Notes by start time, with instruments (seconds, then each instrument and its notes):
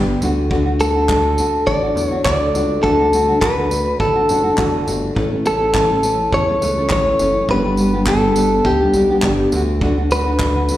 Already playing: analog synth bass G1, nylon-string guitar G2 D3 G3 B3 D4 G4, clean electric guitar G4
0.21 analog synth bass D2, nylon-string guitar D3 A3 D4 F#4, tambourine
0.50 nylon-string guitar D3 A3 D4 F#4, kick
0.66 nylon-string guitar A3 D4 F#4
0.79 nylon-string guitar D3 A3 D4 F#4, clean electric guitar A4, tambourine
0.95 nylon-string guitar A3 D4 F#4
1.08 nylon-string guitar D3 A3 D4 F#4, kick, clap
1.37 nylon-string guitar D3 A3 D4 F#4, tambourine
1.67 analog synth bass A1, clean electric guitar D5, kick
1.82 nylon-string guitar A3 D4 F#4
1.95 analog synth bass E2, nylon-string guitar D3 A3 D4 F#4, tambourine
2.06 clean electric guitar C#5
2.11 nylon-string guitar A3 D4 F#4
2.24 analog synth bass D2, nylon-string guitar D3 A3 D4 F#4, clean electric guitar D5, kick, clap
2.53 analog synth bass C#2, nylon-string guitar D3 A3 D4 F#4, tambourine
2.83 analog synth bass D2, nylon-string guitar D3 A3 D4 F#4, clean electric guitar A4, kick
2.99 nylon-string guitar A3 D4 F#4
3.12 nylon-string guitar D3 A3 D4 F#4, tambourine
3.28 nylon-string guitar A3 D4 F#4
3.41 nylon-string guitar D3 A3 D4 F#4, clean electric guitar B4, kick, clap
3.57 nylon-string guitar A3 D4 F#4
3.69 nylon-string guitar D3 A3 D4 F#4, tambourine
4.00 analog synth bass A1, clean electric guitar A4, kick
4.15 nylon-string guitar A3 D4 F#4
4.28 analog synth bass F#1, nylon-string guitar D3 A3 D4 F#4, tambourine
4.44 nylon-string guitar A3 D4 F#4
4.57 analog synth bass E1, nylon-string guitar D3 A3 D4 F#4, kick, clap
4.86 analog synth bass G1, nylon-string guitar D3 A3 D4 F#4, tambourine
5.15 analog synth bass A1, nylon-string guitar A2 E3 A3 C#4 A4, kick
5.30 nylon-string guitar A3 C#4 A4
5.44 nylon-string guitar E3 A3 C#4 A4, clean electric guitar A4, tambourine
5.60 nylon-string guitar A3 C#4 A4
5.73 nylon-string guitar A2 E3 A3 C#4 A4, kick, clap
5.91 nylon-string guitar A3 C#4 A4
6.03 nylon-string guitar E3 A3 C#4 A4, tambourine
6.32 analog synth bass E2, clean electric guitar C#5, kick
6.48 nylon-string guitar A3 C#4 A4
6.61 analog synth bass C#2, nylon-string guitar E3 A3 C#4 A4, tambourine
6.78 nylon-string guitar A3 C#4 A4
6.90 analog synth bass A1, nylon-string guitar A2 E3 A3 C#4 A4, clean electric guitar C#5, kick, clap
7.19 analog synth bass F#1, nylon-string guitar E3 A3 C#4 A4, tambourine
7.48 analog synth bass G1, nylon-string guitar G2 D3 G3 B3 D4 G4, clean electric guitar B4, kick
7.64 nylon-string guitar G3 B3 D4 G4
7.77 nylon-string guitar G3 B3 D4 G4, tambourine
7.93 nylon-string guitar G3 B3 D4 G4
8.06 nylon-string guitar G2 D3 G3 B3 D4 G4, clean electric guitar A4, kick, clap
8.22 nylon-string guitar G3 B3 D4 G4
8.35 nylon-string guitar G3 B3 D4 G4, tambourine
8.64 analog synth bass D2, clean electric guitar G4, kick
8.80 nylon-string guitar G3 B3 D4 G4
8.94 analog synth bass B1, nylon-string guitar G3 B3 D4 G4, tambourine
9.10 nylon-string guitar G3 B3 D4 G4
9.22 analog synth bass G1, nylon-string guitar G2 D3 G3 B3 D4 G4, kick, clap
9.52 analog synth bass D2, nylon-string guitar D3 A3 D4 F#4, tambourine
9.81 nylon-string guitar D3 A3 D4 F#4, kick
9.98 nylon-string guitar A3 D4 F#4
10.10 nylon-string guitar D3 A3 D4 F#4, clean electric guitar B4, tambourine
10.26 nylon-string guitar A3 D4 F#4
10.39 nylon-string guitar D3 A3 D4 F#4, kick, clap
10.56 nylon-string guitar A3 D4 F#4
10.69 nylon-string guitar D3 A3 D4 F#4, tambourine